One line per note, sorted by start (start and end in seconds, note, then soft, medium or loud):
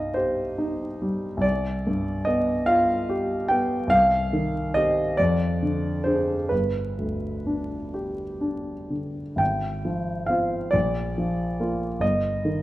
0.00 1.36 C2 soft
0.00 1.46 G2 soft
0.00 0.41 D#4 soft
0.00 0.14 D#5 medium
0.00 1.46 F5 medium
0.14 0.84 G4 soft
0.14 1.43 C5 medium
0.58 1.27 D#4 soft
1.02 1.44 G3 soft
1.37 3.85 C2 soft
1.41 2.26 D5 medium
1.87 2.52 G2 soft
2.25 2.93 B3 soft
2.25 2.67 D#5 medium
2.66 3.34 F4 soft
2.66 3.50 F5 medium
3.09 3.75 G4 soft
3.48 3.92 B3 soft
3.48 3.91 G5 medium
3.87 5.13 C2 soft
3.87 4.75 F5 medium
4.33 5.01 D#3 soft
4.74 5.15 C4 soft
4.74 5.15 G4 soft
4.74 5.18 D#5 medium
5.17 6.48 F2 medium
5.17 6.06 D5 medium
5.62 6.33 D3 soft
6.04 6.47 D4 soft
6.04 6.47 G#4 soft
6.04 6.50 C5 medium
6.49 9.35 G1 soft
6.49 8.90 B4 medium
6.98 7.76 D2 soft
7.46 8.23 D4 soft
7.94 8.71 G4 soft
8.41 9.20 D4 soft
8.90 9.39 D3 soft
9.36 10.68 G#1 soft
9.36 10.29 G5 medium
9.85 10.56 F3 soft
10.26 10.69 C4 soft
10.26 10.69 F4 soft
10.26 10.72 F5 medium
10.71 11.98 A#1 soft
10.71 12.00 D5 medium
11.18 11.86 F3 soft
11.60 11.98 A#3 soft
11.60 11.98 F4 soft
12.00 12.62 G1 soft
12.00 12.62 D#5 medium
12.45 12.62 D#3 soft